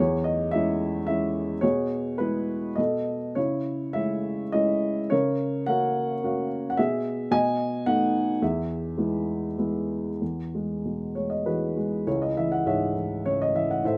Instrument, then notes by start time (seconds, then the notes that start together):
upright piano
0.00 E2 G#4 C#5
0.24 D#5
0.51 G#3 C#4 E4 E5
1.07 G#3 C#4 E4 E5
1.61 B2 G#4 C#5
2.18 G#3 B3 E4 B4
2.76 B2 A4 D#5
3.35 C#3 E4 C#5
3.93 G#3 C#4 E4 E5
4.52 G#3 C#4 E4 D#5
5.10 C#3 A#4 C#5
5.66 A#3 C#4 F#4 A#4 F#5
6.23 A#3 C#4 F#4
6.70 F#5
6.77 B2 G#4 E5
7.31 B2 D#5 G#5
7.86 A3 B3 D#4 F#5
8.42 E2 G#4 E5
8.98 G#3 B3 E4
9.58 G#3 B3 E4
10.21 E2
10.55 G#3
10.85 B2
11.15 G#3 C#5
11.30 D#5
11.46 E3 F#4 G#4 B4
11.77 G#3
12.07 C#2 E4 G#4 C#5
12.22 D#5
12.37 E3 E5
12.52 F#5
12.66 G#2 G#4 C#5 E5
12.96 E3
13.26 C#3 C#5
13.42 D#5
13.54 E3 E5
13.71 F#5
13.84 A2 A4 C5 E5